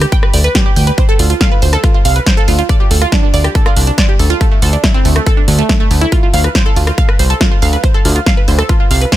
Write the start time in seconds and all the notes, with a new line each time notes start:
0.01 G4, cross-stick, closed hi-hat
0.12 G5, kick, closed hi-hat
0.23 B4, cross-stick
0.34 D2 D5, open hi-hat
0.44 B4, closed hi-hat
0.55 G4, kick, snare, closed hi-hat
0.66 G4
0.76 D2 G5, open hi-hat
0.87 B4, closed hi-hat
0.98 C5, kick, closed hi-hat
1.09 A4
1.19 D2 F4, open hi-hat
1.30 F4, closed hi-hat
1.41 F5, kick, snare, closed hi-hat
1.52 B4
1.62 D2 C5, open hi-hat
1.73 A4, cross-stick, closed hi-hat
1.84 F4, kick, closed hi-hat
1.94 F4
2.05 C2 F5, open hi-hat
2.16 B4, closed hi-hat
2.27 C5, kick, snare, closed hi-hat
2.37 A4
2.48 D2 F4, open hi-hat
2.59 F4, closed hi-hat
2.69 D5, kick, closed hi-hat
2.80 G4
2.91 D2 A4, open hi-hat
3.02 F4, cross-stick, closed hi-hat
3.12 D4, kick, snare, closed hi-hat
3.23 D4
3.34 D2 D5, open hi-hat
3.44 G4, cross-stick, closed hi-hat
3.55 A4, kick, closed hi-hat
3.66 F4, cross-stick
3.77 C2 D4, open hi-hat
3.87 D4, closed hi-hat
3.98 D5, kick, snare, closed hi-hat
4.09 G4
4.19 D2 A4, open hi-hat
4.30 F4, closed hi-hat
4.41 A3, kick, closed hi-hat
4.52 A3
4.62 D2 A4, open hi-hat
4.73 D4, closed hi-hat
4.84 E4, kick, snare, closed hi-hat
4.94 C4
5.05 D2 A3, open hi-hat
5.16 A3, cross-stick, closed hi-hat
5.26 A4, kick, closed hi-hat
5.37 D4
5.48 D2 A3, open hi-hat
5.59 A3, closed hi-hat
5.69 A3, kick, snare, closed hi-hat
5.80 A3
5.91 D2 A3, open hi-hat
6.01 E4, closed hi-hat
6.12 F4, kick, closed hi-hat
6.23 F4
6.34 D2 F5, open hi-hat
6.44 B4, cross-stick, closed hi-hat
6.55 C5, kick, snare, closed hi-hat
6.66 A4
6.76 D2 F4, open hi-hat
6.87 F4, cross-stick, closed hi-hat
6.98 F5, kick, closed hi-hat
7.09 B4, cross-stick
7.19 C2 C5, open hi-hat
7.30 A4, closed hi-hat
7.41 F4, kick, snare, closed hi-hat
7.52 F4
7.62 D2 F5, open hi-hat
7.73 B4, closed hi-hat
7.84 C5, kick, closed hi-hat
7.94 A4
8.05 D2 F4, open hi-hat
8.16 F4, closed hi-hat
8.26 F5, kick, snare, closed hi-hat
8.37 B4
8.48 D2 C5, open hi-hat
8.59 A4, cross-stick, closed hi-hat
8.69 F4, kick, closed hi-hat
8.80 F4
8.91 C2 F5, open hi-hat
9.01 B4, closed hi-hat
9.12 C5, kick, snare, closed hi-hat